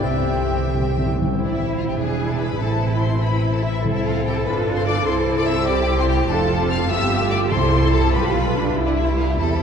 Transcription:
0.03 C2 C3 C4 G4 C5 E5 G5
0.11 C3
0.35 C3
0.43 C3
0.51 C3
0.59 C3
0.66 C3
0.74 C3
0.82 C3
0.90 C3
0.97 C3
1.05 C3
1.14 C3
1.22 C3
1.34 A1 C4 E4
1.45 D4 D5
1.56 E4 E5
1.76 F4 F5
1.87 G4 G5
1.97 E1 D4 E4 G#4 G#5
2.30 A4 A5
2.40 B4 B5
2.60 A1 C4 E4 A4 A5
2.91 B4 B5
3.02 C5 C6
3.23 E4 B4 B5
3.54 A4 A5
3.63 E4 E5
3.84 C2 C3 C4 E4 A4
3.94 E4 E5
4.04 F4 F5
4.25 G4 G5
4.35 A4 A5
4.45 G1 D4 F4 B4 B5
4.76 C5 C6
4.85 D5 D6
5.06 C2 C4 E4 C5 C6
5.37 D5 D6
5.47 E5 E6
5.68 G4 D5 D6
5.98 C5 C6
6.08 G4 G5
6.29 F1 D4 F4 A4 A5
6.60 C4
6.70 F5 F6
6.89 G1 B3 F4 G4 E5 E6
7.21 A3
7.31 D5 D6
7.51 C2 C3 G3 E4 A4 C5 C6
7.93 A4 A5
8.13 B1 G3 F4 G4 B4 B5
8.35 F4
8.55 D4
8.76 C2 G3 E4
8.85 D4 D5
8.96 E4 E5
9.18 F4 F5
9.28 G4 G5
9.39 E2 G3 C4 A4 A5

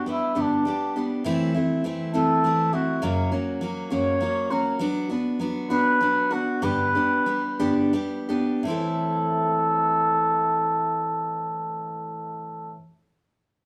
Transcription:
0.06 G3 B3 D4 G4
0.11 E4
0.35 G2 D3 G3 B3 D4 G4
0.41 D4
0.65 G3 B3 D4 G4
0.96 G3 B3 D4 G4
1.24 A2 E3 A3 C4 E4
1.54 A3 C4 E4
1.84 E3 A3 C4 E4
2.14 A2 E3 A3 C4 E4 A4
2.44 E3 A3 C4 E4
2.73 A3 C4 E4 F#4
3.02 F#2 C#3 F#3 A#3 C#4 F#4
3.32 F#3 A#3 C#4 F#4
3.61 F#3 A#3 C#4 F#4
3.90 F#2 C#3 F#3 A#3 C#4 F#4 C#5
4.20 F#3 A#3 C#4 F#4
4.50 F#3 A#3 C#4 F#4 A#4
4.79 F#3 B3 D4 F#4
5.10 B3 D4 F#4
5.39 F#3 B3 D4 F#4
5.70 F#3 B3 D4 F#4 B4
6.01 F#3 B3 D4 F#4
6.31 B3 D4 F#4
6.62 G2 D3 G3 B3 D4 G4 B4
6.95 G3 B3 D4 G4
7.26 G3 B3 D4 G4
7.60 G2 D3 G3 B3 D4 G4
7.93 G3 B3 D4 G4
8.29 G3 B3 D4 G4
8.63 A2 E3 C4 A4
8.68 E4 A4

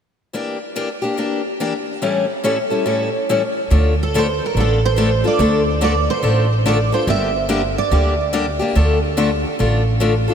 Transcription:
0.33 E3 A#3 D4 G4
0.76 E3 A#3 D4 G4
1.02 A#3 D4 G4
1.17 E3 A#3 D4 G4
1.60 E3 A#3 D4 G4
2.02 A2 E3 G3 C#4 E4 A4
2.44 A2 E3 G3 C#4 E4 A4
2.70 G3 C#4 E4 A4
2.86 A2 E3 G3 C#4 E4 A4
3.29 A2 E3 G3 C#4 E4 A4
3.70 D2 D3 A3 D4 F4 A4
4.03 A4
4.14 D3 A3 D4 F4 A4 C5
4.46 A#4
4.55 A1 D3 A3 D4 F4 A4
4.60 A4
4.85 C5
4.96 D3 A3 D4 F4 A4
5.24 D4 F4 A4 D5
5.39 D2 D3 A3 D4 F4 A4
5.81 D3 A3 D4 F4 A4 D5
6.10 C5
6.23 A1 D3 A3 D4 F4 A4
6.66 D3 A3 D4 F4 A4 D5
6.92 D4 F4 A4 C5
7.07 G1 D3 G3 A#3 D4 G4 E5
7.49 D3 G3 A#3 D4 G4
7.78 D5
7.91 D2 D3 G3 A#3 D4 G4
8.33 D3 G3 A#3 D4 G4
8.59 A#3 D4 G4
8.75 D2 D3 A3 D4 F4 A4
9.17 D3 A3 D4 F4 A4
9.59 A1 D3 A3 D4 F4 A4
10.00 D3 A3 D4 F4 A4
10.28 D4 F4 A4

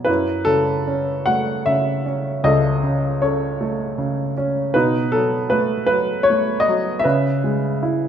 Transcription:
Already playing: A4 D#5
0.05 F#2 E4 B4
0.45 C#3 A4
0.87 C#4
1.26 A3 F#5
1.66 C#3 E5
2.06 C#4
2.44 C#2 A4 D#5
2.83 C#3
3.22 C#4 A4 C#5
3.61 A3
3.98 C#3
4.37 C#4
4.74 B2 D#4 B4
5.12 F#3 A4
5.50 A3 B4
5.87 F#3 B4
6.23 C#5
6.30 A3
6.60 D#5
6.68 F#3
6.99 E5
7.04 C#3 B4
7.44 G#3
7.83 E4

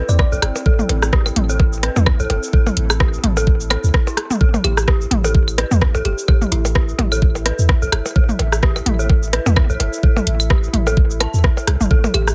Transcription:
Already playing: C4 E4 A4
0.09 E2 D5, cabasa
0.19 D5, kick, cross-stick, percussion blips
0.32 A1 A4, cabasa
0.42 G1, cross-stick, closed hi-hat, claves
0.56 percussion blips, cabasa
0.66 A1 A4, kick
0.79 mid tom, cabasa
0.89 A1, closed hi-hat, percussion blips
1.02 cross-stick, cabasa
1.13 G4, kick, cross-stick
1.26 percussion blips, cabasa, claves
1.36 A1, closed hi-hat, mid tom
1.49 A4, cabasa
1.60 kick, percussion blips
1.73 cabasa
1.83 B4, cross-stick, closed hi-hat
1.96 E2, mid tom, percussion blips, cabasa
2.06 kick, cross-stick, claves
2.20 A1 A4, cabasa
2.30 G1, closed hi-hat, percussion blips
2.43 cabasa
2.53 A1 A4, kick
2.67 mid tom, percussion blips, cabasa
2.77 A1, closed hi-hat
2.90 cross-stick, cabasa, claves
3.00 G4, kick, cross-stick, percussion blips
3.14 cabasa
3.24 A1, closed hi-hat, mid tom
3.37 A4, percussion blips, cabasa
3.47 kick
3.60 cabasa
3.70 A4, cross-stick, closed hi-hat, percussion blips, claves
3.84 D2, cabasa
3.94 kick, cross-stick
4.07 E4, percussion blips, cabasa
4.17 cross-stick, closed hi-hat
4.30 mid tom, cabasa
4.41 A1 A4, kick
4.54 mid tom, percussion blips, cabasa
4.64 A1 G4, closed hi-hat, claves
4.77 cross-stick, cabasa
4.88 G4, kick, cross-stick, percussion blips
5.01 cabasa
5.11 A1, closed hi-hat, mid tom
5.24 A4 E5, percussion blips, cabasa
5.35 kick
5.48 cabasa, claves
5.58 B4, cross-stick, closed hi-hat, percussion blips
5.71 E2, mid tom, cabasa
5.81 kick, cross-stick
5.95 A1 A4, percussion blips, cabasa
6.05 G1 G4, closed hi-hat
6.18 cabasa
6.28 A1 A4, kick, percussion blips, claves
6.42 mid tom, cabasa
6.52 A1 E4, closed hi-hat
6.65 percussion blips, cabasa
6.75 G4, kick, cross-stick
6.89 cabasa
6.99 A1, closed hi-hat, mid tom, percussion blips
7.12 A4, cabasa, claves
7.22 kick
7.35 percussion blips, cabasa
7.46 B4, cross-stick, closed hi-hat
7.59 E2, cabasa
7.69 kick, cross-stick, percussion blips
7.82 A1 A4, cabasa
7.92 G1, cross-stick, closed hi-hat, claves
8.06 percussion blips, cabasa
8.16 A1 A4, kick
8.29 mid tom, cabasa
8.39 A1, closed hi-hat, percussion blips
8.52 cross-stick, cabasa
8.63 G4, kick, cross-stick
8.76 percussion blips, cabasa, claves
8.86 A1, closed hi-hat, mid tom
8.99 A4, cabasa
9.09 kick, percussion blips
9.23 cabasa
9.33 B4, cross-stick, closed hi-hat
9.46 E2, mid tom, percussion blips, cabasa
9.56 kick, cross-stick, claves
9.70 A1 A4, cabasa
9.80 G1, closed hi-hat, percussion blips
9.93 cabasa
10.03 A1 A4, kick
10.17 mid tom, percussion blips, cabasa
10.27 A1, closed hi-hat
10.40 cabasa, claves
10.50 G4, kick, cross-stick, percussion blips
10.64 cabasa
10.73 A1, closed hi-hat, mid tom
10.87 A4, percussion blips, cabasa
10.97 kick
11.10 cabasa
11.20 A5, cross-stick, closed hi-hat, percussion blips, claves
11.34 E2, cabasa
11.44 kick, cross-stick
11.57 A4, percussion blips, cabasa
11.67 C2, cross-stick, closed hi-hat
11.81 G1, mid tom, cabasa
11.91 A1 A4, kick
12.04 mid tom, percussion blips, cabasa
12.14 A1 G4, closed hi-hat, claves
12.28 cross-stick, cabasa

